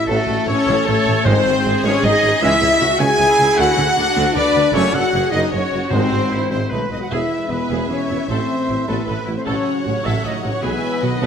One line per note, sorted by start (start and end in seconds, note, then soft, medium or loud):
0.07 0.15 A1 loud
0.07 0.17 A1 loud
0.07 0.16 A2 loud
0.07 0.22 F#3 medium
0.07 0.21 A3 medium
0.07 0.48 A3 loud
0.07 0.46 F#4 medium
0.07 0.46 A4 loud
0.07 0.46 A4 medium
0.07 0.46 A4 loud
0.07 0.47 A4 loud
0.28 0.35 A1 medium
0.28 0.36 A1 medium
0.28 0.35 A2 medium
0.46 0.54 A1 medium
0.46 0.56 A1 medium
0.46 0.55 A2 medium
0.46 0.87 C#4 loud
0.46 0.85 A4 loud
0.46 0.85 C#5 loud
0.46 0.86 C#5 loud
0.46 0.85 C#5 loud
0.46 0.86 C#5 loud
0.46 0.87 C#5 loud
0.67 0.75 A1 loud
0.67 0.75 A2 loud
0.86 0.94 A1 medium
0.86 0.95 A1 medium
0.86 0.95 A2 medium
0.86 1.25 A3 loud
0.86 1.23 A4 loud
0.86 1.24 A4 loud
0.86 1.27 A4 loud
0.86 1.25 A4 loud
0.86 1.25 C#5 loud
1.06 1.14 A1 medium
1.06 1.15 A1 medium
1.06 1.14 A2 medium
1.24 1.33 G#1 loud
1.24 1.79 G#2 loud
1.24 1.34 G#2 loud
1.24 1.39 D#3 loud
1.24 1.38 G#3 loud
1.24 1.84 C4 loud
1.24 1.82 C5 loud
1.24 1.64 C5 loud
1.24 1.83 C5 loud
1.24 1.82 C5 loud
1.24 1.83 C5 loud
1.45 1.53 G#1 medium
1.45 1.53 G#2 medium
1.63 1.72 G#1 medium
1.63 1.73 G#2 medium
1.63 2.80 G#4 loud
1.82 1.91 G#1 loud
1.82 1.92 G#2 loud
1.82 2.03 C#4 loud
1.82 2.02 C#5 loud
1.82 2.03 C#5 loud
1.82 2.06 C#5 loud
2.02 2.11 G#1 medium
2.02 2.11 G#2 medium
2.02 2.42 D#4 loud
2.02 2.41 D#5 loud
2.02 2.43 D#5 loud
2.02 2.41 D#5 loud
2.22 2.30 G#1 medium
2.22 2.31 G#2 medium
2.40 2.49 C#2 loud
2.40 2.50 C#3 loud
2.40 2.56 E3 loud
2.40 2.56 G#3 loud
2.40 2.84 E4 loud
2.40 2.98 E5 loud
2.40 3.00 E5 loud
2.40 2.99 E5 loud
2.40 3.01 E5 loud
2.40 2.99 E5 loud
2.61 2.69 C#2 medium
2.61 2.70 C#3 medium
2.79 2.88 C#2 medium
2.79 2.88 C#3 medium
2.79 3.18 F#4 loud
2.99 3.07 C#2 loud
2.99 3.08 C#3 loud
2.99 3.58 G#4 loud
2.99 3.57 G#5 loud
2.99 3.59 G#5 loud
2.99 3.57 G#5 loud
2.99 3.58 G#5 loud
2.99 3.59 G#5 loud
3.18 3.27 C#2 medium
3.18 3.28 C#3 medium
3.18 3.97 E4 loud
3.38 3.46 C#2 medium
3.38 3.47 C#2 medium
3.38 3.47 C#3 medium
3.56 3.66 D2 loud
3.56 3.71 D3 loud
3.56 3.66 D3 loud
3.56 3.70 A3 loud
3.56 4.34 F#5 loud
3.56 4.09 F#5 loud
3.56 4.36 F#5 loud
3.56 4.35 F#5 loud
3.56 4.08 F#5 loud
3.61 4.37 F#4 loud
3.77 3.85 D2 medium
3.77 3.86 D2 medium
3.77 3.85 D3 medium
3.95 4.04 D2 medium
3.95 4.06 D2 medium
3.95 4.05 D3 medium
3.95 4.34 D4 loud
4.15 4.23 D2 loud
4.15 4.25 D2 loud
4.15 4.25 D3 loud
4.34 4.43 D2 medium
4.34 4.44 D2 medium
4.34 4.44 D3 medium
4.34 4.74 D4 loud
4.34 4.75 B4 loud
4.34 4.75 D5 loud
4.34 4.74 D5 loud
4.34 4.76 D5 loud
4.34 4.72 D5 loud
4.53 4.61 D2 medium
4.53 4.63 D2 medium
4.53 4.63 D3 medium
4.73 4.81 F#1 loud
4.73 4.83 F#1 loud
4.73 4.83 F#2 loud
4.73 4.88 C#3 loud
4.73 4.87 A3 loud
4.73 4.94 C#4 loud
4.73 5.14 A4 medium
4.73 4.93 C#5 loud
4.73 4.95 C#5 loud
4.73 4.82 C#5 loud
4.73 4.96 C#5 loud
4.73 4.94 C#5 loud
4.93 5.01 F#1 medium
4.93 5.02 F#1 medium
4.93 5.03 F#2 medium
4.93 5.33 F#4 loud
4.93 5.33 F#5 loud
4.93 5.32 F#5 loud
4.93 5.33 F#5 loud
4.93 5.30 F#5 loud
5.12 5.21 F#1 medium
5.12 5.22 F#1 medium
5.12 5.22 F#2 medium
5.12 5.52 G#4 loud
5.31 5.40 F#1 loud
5.31 5.41 F#1 loud
5.31 5.41 F#2 loud
5.31 5.52 D#4 loud
5.31 5.40 D#5 loud
5.31 5.39 D#5 loud
5.31 5.38 D#5 loud
5.31 5.52 D#5 loud
5.31 5.53 D#5 loud
5.50 5.60 F#1 medium
5.50 5.61 F#1 medium
5.50 5.61 F#2 medium
5.50 5.91 C#4 loud
5.50 6.30 F#4 loud
5.50 5.90 C#5 medium
5.50 5.91 C#5 medium
5.50 5.92 C#5 medium
5.72 5.80 F#1 medium
5.72 5.81 F#2 medium
5.88 5.99 G#1 loud
5.88 6.00 G#1 medium
5.88 6.47 G#2 loud
5.88 6.05 D#3 medium
5.88 6.06 G#3 medium
5.88 6.49 C4 loud
5.88 6.48 C5 loud
5.88 6.49 C5 loud
5.88 6.50 C5 loud
5.88 6.34 C5 medium
5.93 6.01 G#2 loud
6.11 6.19 G#1 medium
6.11 6.21 G#2 medium
6.30 6.38 G#1 medium
6.30 6.39 G#1 medium
6.30 6.40 G#2 medium
6.30 6.70 E4 medium
6.50 6.58 G#1 medium
6.50 6.59 G#1 medium
6.50 6.60 G#2 medium
6.50 6.71 C4 medium
6.50 6.72 C5 medium
6.50 6.71 C5 medium
6.70 6.79 B1 medium
6.70 6.81 B2 medium
6.70 6.85 D#3 medium
6.70 6.86 A3 medium
6.70 6.91 B3 medium
6.70 6.80 D#4 medium
6.70 7.11 B4 medium
6.70 7.10 B4 medium
6.70 6.91 B4 medium
6.89 6.98 B1 medium
6.89 6.99 B1 medium
6.89 7.01 B2 medium
6.89 7.00 D#4 medium
6.89 7.00 D#5 medium
6.89 6.96 D#5 medium
6.89 7.01 D#5 medium
7.00 7.05 F#4 medium
7.00 7.05 F#5 medium
7.00 7.12 F#5 medium
7.10 7.19 E1 medium
7.10 7.20 E2 medium
7.10 8.25 G#3 medium
7.10 7.50 E4 loud
7.10 7.29 G#4 medium
7.10 8.25 B4 medium
7.10 7.51 E5 medium
7.10 9.42 E5 medium
7.10 7.50 E5 medium
7.48 7.58 E1 medium
7.48 7.59 E1 medium
7.48 7.59 E2 medium
7.48 7.88 B3 medium
7.48 7.59 E4 medium
7.48 7.90 B4 medium
7.48 7.89 B4 medium
7.48 7.90 B4 medium
7.70 7.78 E1 medium
7.70 7.79 E1 medium
7.70 7.78 E2 medium
7.70 7.88 G#4 medium
7.88 7.97 E1 medium
7.88 7.98 E1 medium
7.88 7.98 E2 medium
7.88 8.28 C#4 loud
7.88 7.98 G#4 medium
7.88 8.27 C#5 medium
7.88 8.29 C#5 medium
8.09 8.17 E1 medium
8.09 8.18 E1 medium
8.09 8.18 E2 medium
8.09 8.18 E4 medium
8.27 8.37 A1 medium
8.27 8.38 A2 medium
8.27 9.47 A3 medium
8.27 8.87 C4 loud
8.27 8.47 A4 medium
8.27 8.85 C5 medium
8.27 8.87 C5 medium
8.27 8.88 C5 medium
8.68 8.76 A1 medium
8.68 8.77 A1 medium
8.68 8.76 A2 medium
8.68 8.76 E4 medium
8.86 8.95 A1 medium
8.86 8.96 A1 medium
8.86 8.96 A2 medium
8.86 9.04 B3 medium
8.86 9.05 A4 medium
8.86 9.05 B4 medium
8.86 9.07 B4 medium
8.86 9.06 B4 medium
9.05 9.14 A1 medium
9.05 9.16 A1 medium
9.05 9.16 A2 medium
9.05 9.35 B3 loud
9.05 9.14 A4 medium
9.05 9.35 B4 medium
9.05 9.36 B4 medium
9.05 9.21 B4 medium
9.26 9.34 A1 medium
9.26 9.35 A1 medium
9.26 9.35 A2 medium
9.26 9.34 E4 medium
9.36 9.46 C4 medium
9.36 9.46 C5 medium
9.36 9.41 C5 medium
9.44 9.55 A1 medium
9.44 9.54 A2 medium
9.44 9.83 C#4 loud
9.44 9.63 A4 medium
9.44 10.60 C#5 medium
9.44 9.85 C#5 medium
9.44 9.84 C#5 medium
9.44 10.61 F#5 medium
9.48 10.64 C#3 medium
9.48 10.64 F#3 medium
9.84 9.93 A1 medium
9.84 9.94 A1 medium
9.84 9.94 A2 medium
9.84 10.04 C#4 loud
9.84 9.92 F#4 medium
9.84 10.04 C#5 medium
9.84 10.07 C#5 medium
10.03 10.13 A1 medium
10.03 10.14 A1 medium
10.03 10.13 A2 loud
10.03 10.13 E4 loud
10.03 10.22 A4 medium
10.03 10.24 E5 medium
10.03 10.25 E5 medium
10.23 10.33 A1 medium
10.23 10.34 A1 medium
10.23 10.32 A2 medium
10.23 10.49 D#4 medium
10.23 10.31 A4 medium
10.23 10.36 D#5 medium
10.23 10.51 D#5 medium
10.23 10.32 D#5 medium
10.43 10.52 A1 medium
10.43 10.52 A2 medium
10.43 10.51 F#4 medium
10.50 10.64 C#4 loud
10.50 10.56 C#5 medium
10.50 10.63 C#5 medium
10.50 10.57 C#5 medium
10.62 10.71 B1 medium
10.62 10.71 B2 medium
10.62 11.02 E3 medium
10.62 11.02 G#3 medium
10.62 11.22 B3 loud
10.62 10.80 G#4 medium
10.62 11.20 B4 loud
10.62 11.21 B4 medium
10.62 11.21 B4 loud
10.62 11.02 E5 medium
10.62 11.02 G#5 medium
11.01 11.10 B1 medium
11.01 11.10 B2 medium
11.01 11.26 D#3 medium
11.01 11.26 F#3 medium
11.01 11.10 F#4 medium
11.01 11.26 D#5 medium
11.01 11.26 F#5 medium
11.21 11.26 B1 medium
11.21 11.26 B1 loud
11.21 11.26 B2 loud
11.21 11.26 A3 loud
11.21 11.26 A4 medium
11.21 11.26 B4 loud